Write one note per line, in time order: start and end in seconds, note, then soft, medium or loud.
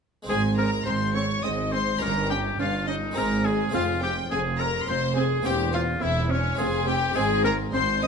0.22 1.94 G#3 medium
0.22 1.95 C4 medium
0.22 1.96 D#4 medium
0.28 0.79 G#1 medium
0.28 0.76 G#2 medium
0.28 0.79 G#2 medium
0.28 0.37 C4 medium
0.28 0.36 G#4 loud
0.28 0.42 G#4 loud
0.28 0.56 G#5 loud
0.57 0.66 C4 medium
0.57 0.85 A#4 medium
0.57 0.71 A#4 loud
0.57 0.85 A#5 loud
0.85 1.37 G#1 medium
0.85 1.37 G#2 medium
0.85 1.34 G#2 medium
0.85 0.95 C4 medium
0.85 1.16 C5 medium
0.85 0.94 C5 medium
0.85 1.15 C6 loud
1.15 1.23 C4 medium
1.15 1.45 C#5 medium
1.15 1.43 C#5 medium
1.15 1.43 C#6 loud
1.43 1.94 G#1 medium
1.43 1.92 G#2 medium
1.43 1.95 G#2 medium
1.43 1.52 C4 medium
1.43 1.73 D#5 medium
1.43 1.72 D#5 medium
1.43 1.51 D#6 loud
1.72 1.81 C4 medium
1.72 2.01 C5 medium
1.72 2.01 C5 loud
1.72 2.01 C6 loud
1.98 2.52 G1 medium
1.98 3.11 C#4 medium
1.98 3.12 D#4 medium
1.98 2.30 A#4 loud
1.98 2.29 A#4 loud
1.98 2.30 A#5 loud
2.02 2.49 G2 medium
2.02 2.52 G2 loud
2.02 2.10 C#4 medium
2.29 2.38 C#4 medium
2.29 2.58 G4 medium
2.29 2.38 G5 loud
2.58 3.09 G1 medium
2.58 3.09 G2 medium
2.58 3.07 G2 medium
2.58 2.67 C#4 medium
2.58 2.66 F4 medium
2.58 2.87 F4 medium
2.58 2.87 F5 loud
2.87 2.96 C#4 medium
2.87 3.15 D#4 medium
2.87 3.19 D#4 medium
2.87 2.95 D#5 loud
3.11 3.69 G#3 medium
3.11 3.68 C4 medium
3.11 3.71 D#4 medium
3.15 3.67 G#1 medium
3.15 3.66 G#2 medium
3.15 3.64 G#2 medium
3.15 3.24 C4 medium
3.15 3.71 G#4 medium
3.15 3.24 A#4 loud
3.15 3.46 A#4 medium
3.15 3.44 A#5 loud
3.45 3.53 C4 medium
3.45 3.73 G#4 medium
3.45 3.73 G#5 medium
3.69 4.24 F2 medium
3.69 5.39 C4 medium
3.69 5.40 F4 medium
3.69 5.40 G#4 medium
3.73 4.24 F1 medium
3.73 4.21 F2 medium
3.73 3.81 C4 medium
3.73 4.02 F4 loud
3.73 3.82 F5 loud
4.02 4.10 C4 medium
4.02 4.16 G4 medium
4.02 4.11 G4 medium
4.02 4.30 G5 loud
4.31 4.81 F1 medium
4.31 4.78 F2 medium
4.31 4.81 F2 medium
4.31 4.39 C4 medium
4.31 4.61 G#4 loud
4.31 4.40 G#4 loud
4.31 4.40 G#5 loud
4.59 4.67 C4 medium
4.59 4.88 A#4 medium
4.59 4.87 A#5 loud
4.88 5.38 F1 medium
4.88 5.38 F2 medium
4.88 5.35 F2 medium
4.88 4.96 C4 medium
4.88 5.16 C5 loud
4.88 5.01 C5 loud
4.88 5.16 C6 loud
5.16 5.24 C4 medium
5.16 5.45 G#4 loud
5.16 5.47 G#4 medium
5.16 5.25 G#5 loud
5.42 5.95 E1 medium
5.42 5.95 E2 loud
5.42 6.54 A#3 medium
5.42 6.55 C4 medium
5.42 5.53 C4 medium
5.42 6.56 G4 medium
5.42 5.73 G4 loud
5.42 5.74 G4 loud
5.42 5.52 G5 loud
5.46 5.93 E2 medium
5.73 5.81 C4 medium
5.73 5.82 F4 medium
5.73 6.04 F4 loud
5.73 5.81 F5 loud
6.01 6.52 E1 loud
6.01 6.52 E2 medium
6.01 6.50 E2 medium
6.01 6.09 C4 medium
6.01 6.32 E4 loud
6.01 6.30 E4 loud
6.01 6.30 E5 loud
6.30 6.38 C4 medium
6.30 6.57 C#4 medium
6.30 6.59 C#4 medium
6.30 6.59 C#5 loud
6.55 7.09 F1 loud
6.55 7.12 G#3 medium
6.55 7.13 C4 medium
6.55 7.14 F4 medium
6.55 6.87 G#4 loud
6.59 7.10 F2 medium
6.59 7.07 F2 medium
6.59 6.67 C4 medium
6.59 6.88 G#4 loud
6.59 6.88 G#5 loud
6.87 6.96 C4 medium
6.87 7.17 G4 medium
6.87 7.17 G4 loud
6.87 7.16 G5 loud
7.13 7.67 G#1 loud
7.13 7.67 G#2 loud
7.13 8.07 G#3 medium
7.13 8.07 C4 medium
7.13 7.24 C4 medium
7.13 8.07 D#4 medium
7.13 7.44 G#4 loud
7.13 7.43 G#4 loud
7.13 7.25 G#5 loud
7.17 7.64 G#2 medium
7.44 7.53 C4 medium
7.44 7.57 A#4 medium
7.44 7.52 A#4 medium
7.44 7.54 A#5 loud
7.73 8.07 G#1 medium
7.73 8.07 G#2 medium
7.73 7.82 C4 medium
7.73 8.01 C5 medium
7.73 8.02 C5 loud
7.73 8.02 C6 loud
8.01 8.07 C4 medium
8.01 8.07 D#5 loud
8.01 8.07 D#6 loud